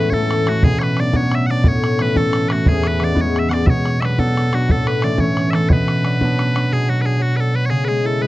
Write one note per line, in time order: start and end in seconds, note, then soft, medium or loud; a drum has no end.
0.00 0.69 A2 medium
0.00 0.12 E3 soft
0.00 0.13 A3 soft
0.00 0.99 B3 soft
0.00 0.13 C#4 soft
0.00 2.09 E4 soft
0.00 0.10 B4 medium
0.10 0.46 E3 medium
0.10 0.47 A3 medium
0.10 0.48 C#4 medium
0.10 0.49 A4 medium
0.10 0.14 C#5 medium
0.10 bodhran medium
0.31 bodhran medium
0.47 0.69 E3 soft
0.47 1.99 A3 soft
0.47 1.05 C#4 medium
0.47 0.64 F#4 medium
0.47 bodhran medium
0.63 1.70 B2 medium
0.63 0.79 G#4 loud
0.63 bodhran medium
0.79 0.83 C#5 medium
0.79 bodhran medium
0.83 1.00 B4 medium
0.97 1.13 F#3 soft
0.97 1.14 B3 soft
0.97 1.15 D4 medium
0.97 1.16 D5 medium
0.97 bodhran medium
1.13 1.49 F#3 medium
1.13 1.50 B3 medium
1.13 1.50 D4 medium
1.13 1.35 C#5 loud
1.13 bodhran medium
1.32 1.46 E5 medium
1.32 bodhran medium
1.46 1.70 F#3 medium
1.46 3.00 B3 soft
1.46 1.51 F#5 medium
1.50 2.06 D4 medium
1.50 1.68 D5 medium
1.64 2.72 A2 medium
1.64 2.02 C#5 loud
1.64 bodhran medium
1.84 bodhran medium
1.99 2.13 E3 medium
1.99 2.15 A3 soft
1.99 2.17 C#4 medium
1.99 2.17 B4 loud
1.99 bodhran medium
2.13 2.49 E3 medium
2.13 2.51 A3 medium
2.13 bodhran medium
2.17 2.51 C#4 medium
2.17 2.49 A4 medium
2.33 bodhran medium
2.49 2.72 E3 soft
2.49 3.06 A3 soft
2.49 4.08 C#4 medium
2.49 2.69 F#4 medium
2.49 2.52 B4 medium
2.49 bodhran medium
2.66 3.73 E2 medium
2.66 2.87 G#4 medium
2.66 bodhran medium
2.84 3.04 B4 medium
2.84 bodhran medium
2.99 3.13 E3 medium
2.99 3.13 G#3 soft
2.99 3.15 B3 medium
2.99 bodhran medium
3.04 3.21 D5 medium
3.14 3.48 E3 medium
3.14 3.48 G#3 medium
3.14 3.50 B3 medium
3.14 bodhran medium
3.21 3.39 C#5 medium
3.36 3.49 E5 medium
3.36 bodhran medium
3.49 3.73 E3 soft
3.49 3.73 G#3 soft
3.49 4.01 B3 medium
3.49 3.66 D5 medium
3.49 3.53 F#5 medium
3.49 bodhran medium
3.66 4.74 B2 medium
3.66 4.01 C#5 loud
3.66 3.70 E5 loud
3.66 bodhran loud
3.86 bodhran medium
4.01 4.17 F#3 soft
4.01 4.18 B3 soft
4.01 4.19 D4 soft
4.01 4.05 E5 medium
4.01 bodhran medium
4.05 4.20 B4 medium
4.18 4.51 F#3 medium
4.18 4.52 B3 medium
4.18 4.53 D4 medium
4.18 4.55 A4 medium
4.18 bodhran medium
4.37 bodhran medium
4.52 4.74 F#3 medium
4.52 6.05 B3 soft
4.52 5.10 D4 medium
4.52 4.71 F#4 medium
4.52 bodhran medium
4.69 5.75 A2 medium
4.69 4.88 A4 medium
4.69 bodhran medium
4.87 5.04 B4 medium
4.87 bodhran medium
5.02 5.18 E3 medium
5.02 5.20 A3 soft
5.02 5.21 C#4 medium
5.02 5.20 D5 medium
5.02 bodhran medium
5.18 5.52 E3 medium
5.18 5.53 A3 medium
5.18 5.54 C#4 medium
5.18 5.50 C#5 loud
5.18 bodhran medium
5.37 bodhran medium
5.50 5.75 E3 soft
5.50 7.94 A3 soft
5.50 6.11 C#4 medium
5.50 5.55 E5 medium
5.50 bodhran medium
5.55 5.69 A4 medium
5.69 6.70 B2 medium
5.69 6.73 B4 medium
5.69 5.73 C#5 medium
5.69 bodhran loud
5.88 bodhran medium
6.05 6.20 F#3 soft
6.05 6.22 B3 soft
6.05 6.23 D4 medium
6.05 bodhran medium
6.21 6.54 F#3 medium
6.21 6.55 B3 medium
6.21 6.56 D4 medium
6.21 bodhran medium
6.39 bodhran medium
6.55 6.76 F#3 soft
6.55 8.27 B3 soft
6.55 7.03 D4 soft
6.55 bodhran medium
6.72 7.77 B2 medium
6.72 6.90 G#4 medium
6.88 7.18 F#3 medium
6.88 7.01 F#4 medium
7.01 7.37 D4 soft
7.01 7.06 B4 medium
7.06 7.22 G#4 medium
7.19 7.52 F#3 medium
7.19 7.36 F#4 medium
7.36 7.76 D4 medium
7.36 7.56 A4 medium
7.36 7.40 B4 medium
7.53 7.77 F#3 medium
7.53 7.66 B4 loud
7.66 7.70 C#5 medium
7.70 8.27 C#3 medium
7.70 7.85 G#4 medium
7.85 8.19 G#3 medium
7.85 8.06 G#4 medium
7.85 7.88 B4 medium
8.05 8.27 E4 medium
8.05 8.22 A4 medium
8.21 8.27 G#3 medium
8.21 8.27 B4 medium